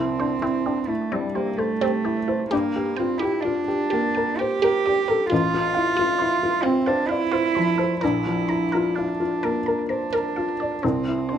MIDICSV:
0, 0, Header, 1, 4, 480
1, 0, Start_track
1, 0, Tempo, 925926
1, 1305, Time_signature, 3, 2, 24, 8
1, 1782, Tempo, 958466
1, 2262, Tempo, 906344
1, 4182, Tempo, 936037
1, 5905, End_track
2, 0, Start_track
2, 0, Title_t, "Synth pluck"
2, 0, Program_c, 0, 84
2, 101, Note_on_c, 0, 72, 66
2, 174, Note_off_c, 0, 72, 0
2, 219, Note_on_c, 0, 60, 85
2, 292, Note_off_c, 0, 60, 0
2, 342, Note_on_c, 0, 67, 59
2, 415, Note_off_c, 0, 67, 0
2, 580, Note_on_c, 0, 60, 84
2, 653, Note_off_c, 0, 60, 0
2, 700, Note_on_c, 0, 72, 58
2, 774, Note_off_c, 0, 72, 0
2, 821, Note_on_c, 0, 72, 61
2, 895, Note_off_c, 0, 72, 0
2, 940, Note_on_c, 0, 60, 94
2, 1014, Note_off_c, 0, 60, 0
2, 1061, Note_on_c, 0, 67, 63
2, 1134, Note_off_c, 0, 67, 0
2, 1181, Note_on_c, 0, 64, 66
2, 1254, Note_off_c, 0, 64, 0
2, 1300, Note_on_c, 0, 67, 93
2, 1373, Note_off_c, 0, 67, 0
2, 1537, Note_on_c, 0, 79, 66
2, 1610, Note_off_c, 0, 79, 0
2, 1656, Note_on_c, 0, 67, 85
2, 1729, Note_off_c, 0, 67, 0
2, 1775, Note_on_c, 0, 74, 60
2, 1847, Note_off_c, 0, 74, 0
2, 2015, Note_on_c, 0, 67, 81
2, 2089, Note_off_c, 0, 67, 0
2, 2137, Note_on_c, 0, 79, 61
2, 2210, Note_off_c, 0, 79, 0
2, 2258, Note_on_c, 0, 79, 64
2, 2333, Note_off_c, 0, 79, 0
2, 2381, Note_on_c, 0, 67, 95
2, 2455, Note_off_c, 0, 67, 0
2, 2506, Note_on_c, 0, 74, 63
2, 2578, Note_off_c, 0, 74, 0
2, 2624, Note_on_c, 0, 70, 63
2, 2696, Note_off_c, 0, 70, 0
2, 2739, Note_on_c, 0, 65, 89
2, 2812, Note_off_c, 0, 65, 0
2, 2975, Note_on_c, 0, 77, 62
2, 3047, Note_off_c, 0, 77, 0
2, 3093, Note_on_c, 0, 65, 86
2, 3165, Note_off_c, 0, 65, 0
2, 3209, Note_on_c, 0, 72, 61
2, 3281, Note_off_c, 0, 72, 0
2, 3444, Note_on_c, 0, 65, 87
2, 3518, Note_off_c, 0, 65, 0
2, 3568, Note_on_c, 0, 77, 61
2, 3641, Note_off_c, 0, 77, 0
2, 3687, Note_on_c, 0, 77, 61
2, 3761, Note_off_c, 0, 77, 0
2, 3808, Note_on_c, 0, 65, 92
2, 3882, Note_off_c, 0, 65, 0
2, 3933, Note_on_c, 0, 72, 62
2, 4007, Note_off_c, 0, 72, 0
2, 4054, Note_on_c, 0, 69, 64
2, 4128, Note_off_c, 0, 69, 0
2, 4177, Note_on_c, 0, 70, 85
2, 4250, Note_off_c, 0, 70, 0
2, 4420, Note_on_c, 0, 82, 64
2, 4492, Note_off_c, 0, 82, 0
2, 4541, Note_on_c, 0, 70, 78
2, 4613, Note_off_c, 0, 70, 0
2, 4661, Note_on_c, 0, 77, 53
2, 4733, Note_off_c, 0, 77, 0
2, 4904, Note_on_c, 0, 70, 83
2, 4975, Note_off_c, 0, 70, 0
2, 5023, Note_on_c, 0, 82, 55
2, 5094, Note_off_c, 0, 82, 0
2, 5141, Note_on_c, 0, 82, 59
2, 5213, Note_off_c, 0, 82, 0
2, 5261, Note_on_c, 0, 70, 86
2, 5334, Note_off_c, 0, 70, 0
2, 5382, Note_on_c, 0, 77, 57
2, 5454, Note_off_c, 0, 77, 0
2, 5504, Note_on_c, 0, 74, 61
2, 5575, Note_off_c, 0, 74, 0
2, 5622, Note_on_c, 0, 60, 82
2, 5693, Note_off_c, 0, 60, 0
2, 5857, Note_on_c, 0, 72, 59
2, 5905, Note_off_c, 0, 72, 0
2, 5905, End_track
3, 0, Start_track
3, 0, Title_t, "Felt piano"
3, 0, Program_c, 1, 0
3, 0, Control_c, 1, 64, 127
3, 0, Note_on_c, 1, 36, 65
3, 0, Note_on_c, 1, 64, 49
3, 104, Note_on_c, 1, 62, 45
3, 179, Note_off_c, 1, 64, 0
3, 217, Note_on_c, 1, 64, 53
3, 224, Note_off_c, 1, 62, 0
3, 341, Note_on_c, 1, 62, 44
3, 413, Note_off_c, 1, 64, 0
3, 455, Note_on_c, 1, 64, 47
3, 463, Note_off_c, 1, 62, 0
3, 583, Note_on_c, 1, 55, 49
3, 652, Note_off_c, 1, 64, 0
3, 702, Note_on_c, 1, 67, 48
3, 776, Note_off_c, 1, 55, 0
3, 818, Note_on_c, 1, 69, 44
3, 896, Note_off_c, 1, 67, 0
3, 939, Note_on_c, 1, 67, 47
3, 942, Note_off_c, 1, 69, 0
3, 1064, Note_on_c, 1, 64, 47
3, 1135, Note_off_c, 1, 67, 0
3, 1187, Note_on_c, 1, 72, 50
3, 1257, Note_off_c, 1, 64, 0
3, 1286, Note_off_c, 1, 36, 0
3, 1306, Note_off_c, 1, 72, 0
3, 1309, Note_on_c, 1, 43, 64
3, 1314, Control_c, 1, 64, 0
3, 1397, Control_c, 1, 64, 127
3, 1431, Note_on_c, 1, 67, 50
3, 1553, Note_on_c, 1, 65, 45
3, 1617, Note_off_c, 1, 67, 0
3, 1667, Note_off_c, 1, 65, 0
3, 1671, Note_on_c, 1, 67, 54
3, 1789, Note_on_c, 1, 65, 47
3, 1855, Note_off_c, 1, 67, 0
3, 1902, Note_off_c, 1, 65, 0
3, 1904, Note_on_c, 1, 67, 48
3, 2028, Note_on_c, 1, 58, 51
3, 2095, Note_off_c, 1, 67, 0
3, 2150, Note_on_c, 1, 70, 51
3, 2217, Note_off_c, 1, 58, 0
3, 2269, Note_on_c, 1, 72, 48
3, 2340, Note_off_c, 1, 70, 0
3, 2389, Note_off_c, 1, 72, 0
3, 2391, Note_on_c, 1, 70, 55
3, 2515, Note_on_c, 1, 67, 55
3, 2582, Note_off_c, 1, 70, 0
3, 2633, Note_on_c, 1, 69, 58
3, 2702, Note_off_c, 1, 67, 0
3, 2726, Note_off_c, 1, 43, 0
3, 2749, Note_off_c, 1, 69, 0
3, 2751, Note_on_c, 1, 33, 70
3, 2755, Control_c, 1, 64, 0
3, 2849, Control_c, 1, 64, 127
3, 2870, Note_on_c, 1, 65, 59
3, 2988, Note_on_c, 1, 64, 49
3, 3053, Note_off_c, 1, 65, 0
3, 3101, Note_off_c, 1, 64, 0
3, 3107, Note_on_c, 1, 65, 58
3, 3226, Note_on_c, 1, 64, 48
3, 3290, Note_off_c, 1, 65, 0
3, 3337, Note_off_c, 1, 64, 0
3, 3341, Note_on_c, 1, 65, 57
3, 3461, Note_on_c, 1, 60, 58
3, 3526, Note_off_c, 1, 65, 0
3, 3574, Note_on_c, 1, 72, 60
3, 3647, Note_off_c, 1, 60, 0
3, 3698, Note_on_c, 1, 74, 48
3, 3765, Note_off_c, 1, 72, 0
3, 3814, Note_on_c, 1, 72, 53
3, 3815, Note_off_c, 1, 74, 0
3, 3941, Note_on_c, 1, 53, 51
3, 4008, Note_off_c, 1, 72, 0
3, 4060, Note_on_c, 1, 72, 56
3, 4134, Note_off_c, 1, 53, 0
3, 4161, Note_off_c, 1, 33, 0
3, 4182, Note_off_c, 1, 72, 0
3, 4189, Control_c, 1, 64, 0
3, 4192, Note_on_c, 1, 34, 65
3, 4280, Control_c, 1, 64, 127
3, 4306, Note_on_c, 1, 53, 47
3, 4425, Note_on_c, 1, 64, 42
3, 4496, Note_off_c, 1, 53, 0
3, 4544, Note_off_c, 1, 64, 0
3, 4555, Note_on_c, 1, 65, 50
3, 4674, Note_on_c, 1, 64, 41
3, 4741, Note_off_c, 1, 65, 0
3, 4787, Note_on_c, 1, 65, 44
3, 4788, Note_off_c, 1, 64, 0
3, 4911, Note_on_c, 1, 58, 41
3, 4976, Note_off_c, 1, 65, 0
3, 5033, Note_on_c, 1, 70, 47
3, 5098, Note_off_c, 1, 58, 0
3, 5145, Note_on_c, 1, 72, 40
3, 5219, Note_off_c, 1, 70, 0
3, 5263, Note_off_c, 1, 72, 0
3, 5268, Note_on_c, 1, 70, 47
3, 5390, Note_on_c, 1, 65, 42
3, 5458, Note_off_c, 1, 70, 0
3, 5513, Note_on_c, 1, 74, 45
3, 5578, Note_off_c, 1, 65, 0
3, 5608, Note_off_c, 1, 34, 0
3, 5627, Note_off_c, 1, 74, 0
3, 5630, Note_on_c, 1, 36, 57
3, 5631, Control_c, 1, 64, 0
3, 5716, Control_c, 1, 64, 127
3, 5751, Note_on_c, 1, 64, 42
3, 5873, Note_on_c, 1, 62, 38
3, 5905, Note_off_c, 1, 36, 0
3, 5905, Note_off_c, 1, 62, 0
3, 5905, Note_off_c, 1, 64, 0
3, 5905, End_track
4, 0, Start_track
4, 0, Title_t, "Cello"
4, 0, Program_c, 2, 42
4, 0, Note_on_c, 2, 60, 88
4, 457, Note_on_c, 2, 57, 75
4, 465, Note_off_c, 2, 60, 0
4, 587, Note_on_c, 2, 55, 72
4, 595, Note_off_c, 2, 57, 0
4, 701, Note_on_c, 2, 58, 80
4, 709, Note_off_c, 2, 55, 0
4, 812, Note_on_c, 2, 57, 86
4, 819, Note_off_c, 2, 58, 0
4, 1289, Note_off_c, 2, 57, 0
4, 1292, Note_on_c, 2, 58, 87
4, 1534, Note_on_c, 2, 60, 81
4, 1542, Note_off_c, 2, 58, 0
4, 1648, Note_on_c, 2, 64, 80
4, 1655, Note_off_c, 2, 60, 0
4, 1766, Note_on_c, 2, 62, 89
4, 1774, Note_off_c, 2, 64, 0
4, 2254, Note_on_c, 2, 67, 99
4, 2262, Note_off_c, 2, 62, 0
4, 2737, Note_off_c, 2, 67, 0
4, 2740, Note_on_c, 2, 65, 116
4, 3445, Note_on_c, 2, 60, 97
4, 3453, Note_off_c, 2, 65, 0
4, 3574, Note_on_c, 2, 62, 93
4, 3582, Note_off_c, 2, 60, 0
4, 3679, Note_on_c, 2, 64, 107
4, 3687, Note_off_c, 2, 62, 0
4, 4171, Note_off_c, 2, 64, 0
4, 4174, Note_on_c, 2, 64, 84
4, 4657, Note_on_c, 2, 62, 68
4, 4665, Note_off_c, 2, 64, 0
4, 5138, Note_off_c, 2, 62, 0
4, 5141, Note_on_c, 2, 62, 77
4, 5622, Note_on_c, 2, 60, 80
4, 5630, Note_off_c, 2, 62, 0
4, 5905, Note_off_c, 2, 60, 0
4, 5905, End_track
0, 0, End_of_file